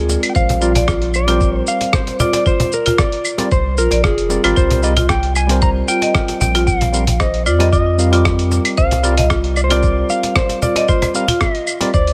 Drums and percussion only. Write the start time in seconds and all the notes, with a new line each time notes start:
0.09 cajon slap, shaker
0.23 closed hi-hat, claves, shaker
0.35 kick, shaker
0.49 cajon bass, cajon slap, closed hi-hat, shaker
0.62 shaker
0.76 cajon bass, closed hi-hat, shaker
0.88 kick, cross-stick, shaker
1.02 closed hi-hat
1.14 claves, shaker
1.28 cajon slap, closed hi-hat, shaker
1.40 kick, shaker
1.67 shaker
1.81 cajon slap, closed hi-hat, shaker
1.93 kick, cross-stick, shaker
2.07 cajon slap, closed hi-hat, shaker
2.19 cajon bass, shaker
2.33 cajon slap, closed hi-hat, shaker
2.46 kick, shaker
2.60 cajon bass, cajon slap, closed hi-hat, shaker
2.72 shaker
2.86 cajon bass, closed hi-hat, shaker
2.98 kick, cross-stick, shaker
3.12 closed hi-hat
3.25 claves, shaker
3.38 cajon slap, closed hi-hat, shaker
3.51 kick, shaker
3.77 shaker
3.91 cajon slap, closed hi-hat, shaker
4.04 kick, cross-stick, shaker
4.18 closed hi-hat, shaker
4.30 cajon slap, shaker
4.44 closed hi-hat, claves, shaker
4.57 kick, shaker
4.71 cajon bass, cajon slap, closed hi-hat, shaker
4.83 shaker
4.97 cajon bass, closed hi-hat, shaker
5.09 kick, cross-stick, shaker
5.23 closed hi-hat
5.35 claves, shaker
5.49 cajon slap, closed hi-hat, shaker
5.62 kick, shaker
5.88 shaker
6.02 cajon slap, closed hi-hat, shaker
6.15 kick, cross-stick, shaker
6.28 cajon slap, closed hi-hat, shaker
6.41 cajon bass, shaker
6.55 cajon slap, closed hi-hat, shaker
6.67 kick, shaker
6.81 cajon bass, cajon slap, closed hi-hat, shaker
6.94 shaker
7.07 cajon bass, closed hi-hat, shaker
7.20 kick, cross-stick, shaker
7.34 closed hi-hat
7.46 claves, shaker
7.60 cajon slap, closed hi-hat, shaker
7.73 kick, shaker
7.99 shaker
8.13 cajon slap, closed hi-hat, shaker
8.25 kick, cross-stick, shaker
8.39 closed hi-hat, shaker
8.51 cajon slap, shaker
8.65 closed hi-hat, claves, shaker
8.77 kick, shaker
8.91 cajon bass, cajon slap, closed hi-hat, shaker
9.04 shaker
9.17 cajon bass, closed hi-hat, shaker
9.30 kick, cross-stick, shaker
9.44 closed hi-hat
9.56 claves, shaker
9.70 cajon slap, closed hi-hat, shaker
9.83 kick, shaker
10.09 shaker
10.23 cajon slap, closed hi-hat, shaker
10.36 kick, cross-stick, shaker
10.49 cajon slap, closed hi-hat, shaker
10.62 cajon bass, shaker
10.76 cajon slap, closed hi-hat, shaker
10.88 kick, shaker
11.02 cajon bass, cajon slap, closed hi-hat, claves, shaker
11.15 shaker
11.28 cajon bass, closed hi-hat, shaker
11.41 kick, cross-stick, shaker
11.55 closed hi-hat
11.67 claves, shaker
11.81 cajon slap, closed hi-hat, shaker
11.94 kick, shaker
12.07 closed hi-hat, shaker